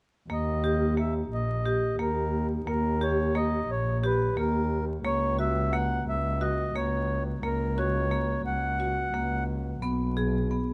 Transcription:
0.29 1.27 D#2 medium
0.29 0.59 A#3 medium
0.29 0.95 D#5 medium
0.64 0.93 G4 medium
0.97 1.56 A#3 medium
0.97 1.14 E5 medium
1.31 1.95 A#1 medium
1.31 1.96 D#5 medium
1.66 1.95 G4 medium
1.98 2.63 D#2 medium
1.98 2.58 A#3 medium
1.98 2.47 A#4 medium
2.67 3.65 D#2 medium
2.67 2.96 A#3 medium
2.67 3.03 A#4 medium
3.01 3.30 G4 medium
3.01 3.37 C#5 medium
3.35 3.93 A#3 medium
3.35 3.71 D#5 medium
3.69 4.33 A#1 medium
3.69 4.05 C#5 medium
4.04 4.33 G4 medium
4.04 4.36 B4 medium
4.37 5.01 D#2 medium
4.37 4.95 A#3 medium
4.37 4.85 A#4 medium
5.04 6.03 C#2 medium
5.04 5.34 A#3 medium
5.04 5.37 C#5 medium
5.39 5.68 F#4 medium
5.39 5.74 E5 medium
5.72 6.31 A#3 medium
5.72 6.04 F#5 medium
6.07 6.71 C#2 medium
6.07 6.43 E5 medium
6.41 6.70 F#4 medium
6.41 6.76 D#5 medium
6.75 7.39 C#2 medium
6.75 7.34 A#3 medium
6.75 7.23 C#5 medium
7.43 8.41 C#2 medium
7.43 7.72 A#3 medium
7.43 7.79 A#4 medium
7.78 8.07 F#4 medium
7.78 8.42 C#5 medium
8.11 8.70 A#3 medium
8.45 9.09 C#2 medium
8.45 9.44 F#5 medium
8.80 9.09 F#4 medium
9.14 9.78 C#2 medium
9.14 9.72 A#3 medium
9.82 10.73 B1 medium
9.82 10.11 B3 medium
10.17 10.46 G#4 medium
10.51 10.73 B3 medium

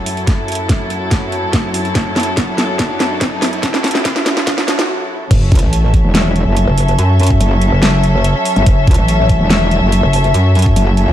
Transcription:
0.00 5.27 F#2 medium
0.00 5.27 F#3 medium
0.00 5.27 E4 medium
0.00 5.27 A4 medium
0.00 riser medium
0.06 open hi-hat medium
0.17 closed hi-hat soft
0.27 kick loud
0.27 snare medium
0.27 closed hi-hat medium
0.48 closed hi-hat soft
0.52 closed hi-hat medium
0.55 closed hi-hat medium
0.69 kick loud
0.69 snare medium
0.69 closed hi-hat medium
0.90 closed hi-hat medium
1.11 kick loud
1.11 snare medium
1.11 closed hi-hat medium
1.32 closed hi-hat medium
1.53 kick loud
1.53 snare medium
1.53 closed hi-hat medium
1.74 open hi-hat medium
1.85 closed hi-hat soft
1.95 kick loud
1.95 snare medium
1.95 closed hi-hat medium
2.16 snare medium
2.16 closed hi-hat soft
2.20 closed hi-hat medium
2.23 closed hi-hat medium
2.37 kick loud
2.37 snare medium
2.37 closed hi-hat medium
2.58 snare medium
2.58 closed hi-hat medium
2.79 kick loud
2.79 snare medium
2.79 closed hi-hat medium
3.00 snare medium
3.00 closed hi-hat medium
3.21 kick loud
3.21 snare medium
3.21 closed hi-hat medium
3.42 snare medium
3.42 open hi-hat medium
3.53 closed hi-hat soft
3.63 kick loud
3.63 snare medium
3.63 closed hi-hat medium
3.74 snare medium
3.84 snare medium
3.84 closed hi-hat soft
3.88 closed hi-hat medium
3.91 snare medium
3.91 closed hi-hat medium
4.05 kick loud
4.05 snare loud
4.05 closed hi-hat medium
4.16 snare medium
4.26 snare loud
4.26 closed hi-hat medium
4.37 snare medium
4.47 kick loud
4.47 snare loud
4.47 closed hi-hat medium
4.58 snare medium
4.68 snare loud
4.68 closed hi-hat medium
4.79 snare medium
5.31 5.50 F#1 loud
5.31 11.13 F#3 medium
5.31 11.13 C#4 medium
5.31 11.13 A4 medium
5.31 11.13 E5 medium
5.31 kick loud
5.31 closed hi-hat medium
5.31 crash loud
5.31 sub drop medium
5.52 5.61 C#2 loud
5.52 kick loud
5.52 closed hi-hat medium
5.55 closed hi-hat medium
5.59 6.03 A1 loud
5.59 closed hi-hat medium
5.73 closed hi-hat medium
5.94 kick medium
5.94 closed hi-hat medium
6.05 6.45 E1 loud
6.15 snare loud
6.15 closed hi-hat medium
6.36 closed hi-hat medium
6.47 6.66 F#1 loud
6.57 closed hi-hat medium
6.68 6.97 F#1 loud
6.78 open hi-hat loud
6.88 closed hi-hat soft
6.99 7.39 F#2 loud
6.99 closed hi-hat medium
7.20 closed hi-hat medium
7.23 closed hi-hat medium
7.27 kick medium
7.27 closed hi-hat medium
7.41 7.71 F#1 medium
7.41 closed hi-hat medium
7.62 closed hi-hat medium
7.72 8.34 F#1 medium
7.83 snare loud
7.83 closed hi-hat medium
8.04 closed hi-hat medium
8.24 closed hi-hat medium
8.45 open hi-hat loud
8.56 8.65 G1 medium
8.56 closed hi-hat soft
8.66 8.86 F#1 loud
8.66 kick loud
8.66 closed hi-hat medium
8.87 8.97 C#2 loud
8.87 kick loud
8.87 closed hi-hat soft
8.91 closed hi-hat medium
8.94 closed hi-hat medium
8.98 9.39 A1 loud
9.08 closed hi-hat medium
9.29 kick medium
9.29 closed hi-hat medium
9.40 9.81 E1 loud
9.50 snare loud
9.50 closed hi-hat medium
9.71 closed hi-hat medium
9.82 10.02 F#1 loud
9.92 closed hi-hat medium
10.03 10.33 F#1 loud
10.13 open hi-hat medium
10.24 closed hi-hat soft
10.34 10.75 F#2 loud
10.34 closed hi-hat medium
10.55 closed hi-hat soft
10.59 closed hi-hat medium
10.62 kick medium
10.62 closed hi-hat medium
10.76 11.06 F#1 loud
10.76 closed hi-hat medium
10.97 closed hi-hat medium
11.08 11.13 C#2 loud

